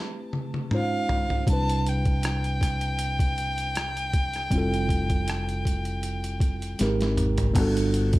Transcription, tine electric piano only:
Already playing: A3 C4 E4 G4 B4
0.71 G#3 C#4 D#4 F4 C5
1.46 G3 C4 D4
1.51 E4 B4
4.50 G3 C4 E4
4.55 F4 A4
6.79 G#3 C4 D#4 G4 A#4
7.54 G3 B3
7.58 D4 F#4 A4

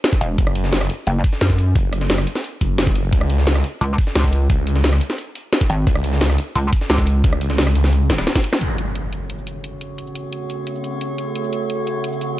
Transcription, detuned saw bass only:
0.38 F#1
1.75 F#1
2.61 F#1
2.95 F#1
3.13 C#2
4.50 C#2
5.87 C#2
7.24 C#2
7.75 C#2

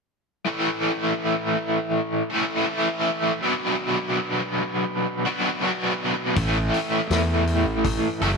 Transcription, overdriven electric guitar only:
0.45 A2 E3 A3 C#4 A4
2.30 A2 E3 A3 C#4 A4
2.67 A2 E3 A3 C#4 A4
3.41 B2 F#3 B3 D4 F#4
5.26 B2 F#3 B3 D4 F#4
5.62 B2 F#3 B3 D4 F#4
6.36 A2 E3 A3 C#4 A4
8.22 A2 E3 A3 C#4 A4

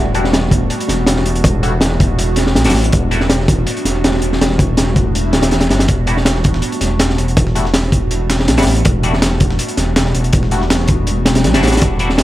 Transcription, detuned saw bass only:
Already playing: E1
0.89 E1
1.26 E1
1.44 E1
2.18 E1
2.55 B1
2.65 E1
2.74 A1
2.93 E1
3.85 E1
4.22 E1
4.41 E1
5.15 E1
5.33 D1
5.43 E1
5.70 G1
5.88 E1
6.81 E1
7.18 E1
7.37 E1
8.11 E1
8.48 B1
8.58 E1
8.66 A1
8.86 E1
9.77 E1
10.14 E1
10.33 E1
11.07 E1
11.44 B1
11.54 E1
11.63 A1
11.82 E1

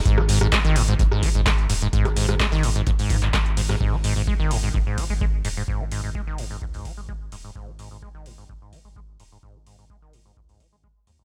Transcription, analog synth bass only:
0.06 G#1
0.65 G#1
0.99 F#1
1.23 G#1
1.35 G#1
1.70 D#1
1.93 G#1
2.52 G#1
3.10 G#2
3.22 G#1
3.81 G#1
4.40 G#1
4.74 F#1
4.98 G#1
5.10 G#1
5.45 D#1
5.68 G#1
6.27 G#1
6.62 C#2
6.97 G#1
7.32 D#1
7.56 G#1
8.15 G#1
8.49 F#1
8.73 G#1
8.85 G#1
9.20 D#1
9.43 G#1
10.02 G#1
10.37 C#2
10.60 G#1
11.07 D#2

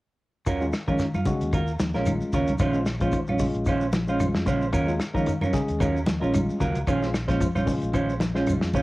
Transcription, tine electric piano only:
0.60 G#3 C#4 F4
0.88 G#3 C#4 F4
1.27 G#3 C#4 F#4
1.94 G#3 C#4 F4
2.73 G#3 C#4 F4
3.00 G#3 C#4 F4
3.39 G#3 C#4 F4
4.07 G#3 C#4 F4
4.87 G#3 C#4 F4
5.14 G#3 C#4 D#4
5.53 G#3 C#4 G#4
6.20 G#3 C#4 F4
7.00 G#3 C#4 F4
7.27 G#3 C#4 F4
7.65 G#3 C#4 F4
8.34 G#3 C#4 F4

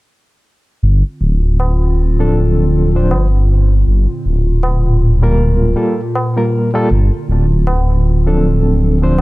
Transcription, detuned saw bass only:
0.83 G1
1.21 D1
3.11 G1
3.87 G1
4.25 D1
6.91 G1
7.29 D1

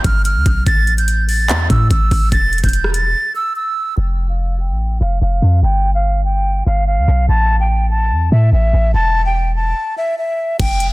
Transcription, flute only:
0.04 F6
0.25 F6
0.66 A6
0.98 G6
1.29 A6
1.70 E6
1.91 E6
2.32 A6
2.64 G6
2.94 A6
3.35 E6
3.56 E6
3.97 G5
4.29 F5
4.60 G5
5.01 F5
5.22 F5
5.63 G5
5.95 F5
6.25 G5
6.66 F5
6.87 F5
7.29 A5
7.60 G5
7.91 A5
8.32 E5
8.53 E5
8.94 A5
9.26 G5
9.56 A5
9.98 E5
10.18 E5
10.60 G5

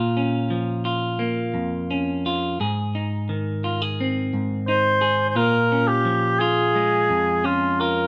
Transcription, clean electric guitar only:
Already playing: A#2 F4
0.17 C#4
0.50 F3
0.85 F4
1.19 A#3
1.54 F2
1.91 C#4
2.26 F4
2.60 G#2 G#4
2.95 D#4
3.29 D#3
3.64 F4
3.82 G#4
4.01 C4
4.34 G#2
4.68 D#4
5.01 G#4
5.36 A#2 F4
5.72 C#4
6.05 F3
6.41 F4
6.75 G#3
7.10 F2
7.44 C#4
7.81 F4

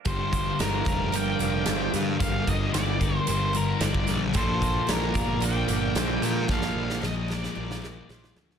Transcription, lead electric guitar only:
0.08 C5
0.60 A#4
1.15 G5
2.20 F5
2.48 D#5
2.73 D5
3.17 C5
3.28 C5
3.57 A#4
3.82 D5
4.36 C5
4.90 A#4
5.44 G5
6.51 F5
7.05 D#5
7.33 D5

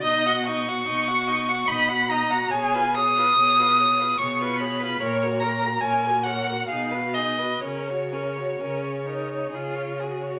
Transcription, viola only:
0.04 D#4
0.26 F#4
0.47 D#4
0.67 F#4
0.87 D#4
1.08 F#4
1.28 D#4
1.49 F#4
1.70 D#4
1.89 F#4
2.10 D#4
2.31 F#4
2.54 G#4
2.75 F4
2.97 G#4
3.18 F4
3.38 G#4
3.59 F4
3.79 G#4
3.99 F4
4.21 G#4
4.41 F4
4.61 G#4
4.82 F4
5.02 A#4
5.24 F#4
5.43 A#4
5.64 F#4
5.84 A#4
6.06 F#4
6.26 A#4
6.50 F#4
6.73 D#4
6.94 F#4
7.17 D#4
7.41 F#4
7.65 C#4
7.90 F#4
8.12 C#4
8.38 F#4
8.62 C#4
9.08 D#4
9.55 F4
10.01 F#4

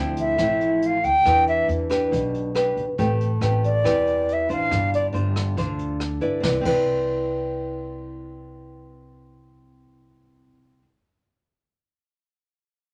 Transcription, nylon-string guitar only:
Already playing: D3 F3 C4 E4
0.38 A2 F3 C4 E4
1.25 E3 D4 G4 B4
1.90 D4 G4 B4
2.11 B2
2.55 D4 G4 B4
2.98 A3 C4 G4 B4
3.41 C4 G4 B4
3.84 E3 C4 G4 B4
4.49 D4 F4 C5
4.71 G3
5.13 D4 F4 C5
5.57 D3 D4 F4 C5
6.21 E4 B4 D5
6.40 C4 E4
6.45 B4 D5
6.61 C4 E4
6.66 B4 D5

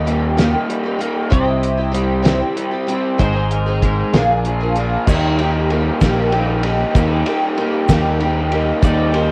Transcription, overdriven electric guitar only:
Already playing: D#3 A#3
0.06 G3
0.37 A#3
0.69 G3
0.99 A#3
1.32 C3
1.94 G3
2.25 C4
2.56 G3
2.89 C4
3.19 G#2
3.83 G#3
4.14 A#2
4.46 F3
4.77 A#3
5.07 D#3 G3 A#3 D#4 G4
5.39 A#3 D#4 G4
5.71 G3 A#3 D#4 G4
6.02 A#3 D#4 G4
6.33 G3 A#3 D#4 G4
6.63 A#3 D#4 G4
6.94 D#3 G3 A#3 D#4 G4
7.27 A#3 D#4 G4
7.57 G3 A#3 D#4 G4
7.89 A#3 D#4 G4
8.20 G3 A#3 D#4 G4
8.51 A#3 D#4 G4
8.82 D#3 G3 A#3 D#4 G4
9.14 A#3 D#4 G4

